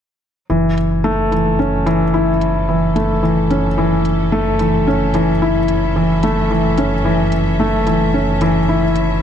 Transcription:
0.50 F#1 E3 F#3
0.78 closed hi-hat
0.87 C#4
1.04 A3
1.16 A4
1.32 E3, closed hi-hat
1.59 C#4
1.86 E3, closed hi-hat
2.14 E4
2.41 closed hi-hat
2.69 E3
2.86 E5
2.96 A3, closed hi-hat
3.23 E3
3.50 C#4, closed hi-hat
3.78 E3
4.05 closed hi-hat
4.32 A3
4.59 E3, closed hi-hat
4.87 C#4
5.14 E3, closed hi-hat
5.42 E4
5.68 closed hi-hat
5.96 E3
6.23 A3, closed hi-hat
6.50 E3
6.78 C#4, closed hi-hat
7.05 E3
7.32 closed hi-hat
7.60 A3
7.87 E3, closed hi-hat
8.14 C#4
8.41 E3, closed hi-hat
8.69 E4
8.96 closed hi-hat

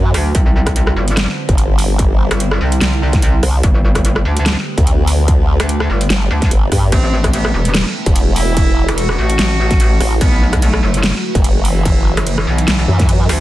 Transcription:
Already playing: F#2 D3 F#3 B3 F#4 B4
0.14 D2, cross-stick, open hi-hat
0.35 C2 G3 C4 E4 C5, kick, closed hi-hat
0.67 kick, cross-stick, closed hi-hat
0.76 closed hi-hat
0.87 cross-stick
0.96 G1
1.08 closed hi-hat
1.17 cross-stick, snare, closed hi-hat
1.28 snare
1.49 G1, kick, closed hi-hat
1.58 closed hi-hat
1.79 open hi-hat
1.99 kick, closed hi-hat
2.31 G1, cross-stick, closed hi-hat
2.40 closed hi-hat
2.51 cross-stick
2.61 C2
2.72 closed hi-hat
2.81 C2, snare, closed hi-hat
3.13 kick, snare, closed hi-hat
3.22 closed hi-hat
3.43 C2, cross-stick, open hi-hat
3.63 G1 D3 A3 B3 G4 B4, kick, closed hi-hat
3.95 kick, cross-stick, closed hi-hat
4.05 closed hi-hat
4.16 cross-stick
4.25 D2
4.37 closed hi-hat
4.46 cross-stick, snare, closed hi-hat
4.57 snare
4.78 D2, kick, closed hi-hat
4.87 closed hi-hat
5.07 open hi-hat
5.28 kick, closed hi-hat
5.60 D2, cross-stick, closed hi-hat
5.69 closed hi-hat
5.80 cross-stick
5.90 G1
6.01 closed hi-hat
6.10 G1, snare, closed hi-hat
6.31 D2
6.42 kick, snare, closed hi-hat
6.51 G1, closed hi-hat
6.72 G2, kick, cross-stick, open hi-hat
6.92 A1 C3 E3 C4 E4 A4, kick, closed hi-hat, crash
7.24 kick, cross-stick, closed hi-hat
7.33 B3, closed hi-hat, crash
7.45 cross-stick
7.54 E1
7.65 closed hi-hat
7.74 cross-stick, snare, closed hi-hat, crash
7.86 snare
8.06 E1, kick, closed hi-hat
8.16 closed hi-hat, crash
8.36 E4, open hi-hat
8.57 kick, closed hi-hat, crash
8.89 E1, cross-stick, closed hi-hat
8.98 F#4, closed hi-hat, crash
9.09 cross-stick
9.18 A1
9.30 closed hi-hat
9.39 A1, snare, closed hi-hat, crash
9.71 kick, snare, closed hi-hat
9.80 closed hi-hat, crash
10.00 A1, cross-stick, open hi-hat
10.21 B1 D3 F#3 B3 F#4 B4, kick, closed hi-hat, crash
10.53 kick, cross-stick, closed hi-hat
10.62 A3, closed hi-hat, crash
10.74 cross-stick
10.83 F#1
10.94 closed hi-hat
11.03 cross-stick, snare, closed hi-hat, crash
11.15 snare
11.35 F#1, kick, closed hi-hat
11.44 closed hi-hat, crash
11.65 E3, open hi-hat
11.85 kick, closed hi-hat, crash
12.17 F#1, cross-stick, closed hi-hat
12.27 E3, closed hi-hat, crash
12.38 cross-stick
12.47 B1
12.58 closed hi-hat
12.68 B1, snare, closed hi-hat, crash
12.88 F#2
12.99 kick, snare, closed hi-hat
13.09 closed hi-hat, crash
13.29 D2, cross-stick, open hi-hat

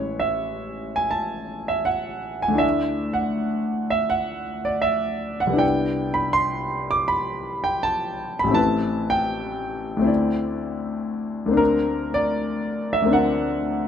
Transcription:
Already playing: A1 G#3 C#4 E4 B4 C#5
0.20 E5
0.96 G#5
1.11 A5
1.68 E5
1.85 F#5
2.42 G#5
2.48 D2 A3
2.54 D4 E4
2.58 D5 E5
3.13 F#5
3.90 E5
4.10 F#5
4.65 D5
4.82 E5
5.40 F#5
5.47 C2 B3
5.53 D4 E4
5.58 D5 G5
6.14 B5
6.33 C6
6.91 D6
7.08 B5
7.64 G5
7.83 A5
8.39 B5
8.44 A1 A3
8.50 C4 E4
8.54 B4 A5
9.10 G5
9.97 D2 A3
10.02 C4 E4
10.07 D5
11.46 D2 A#3
11.51 C4 D4
11.57 A#4
12.14 D5
12.93 E5
13.02 D2 A#3
13.07 C4 D4
13.13 A#4 F#5

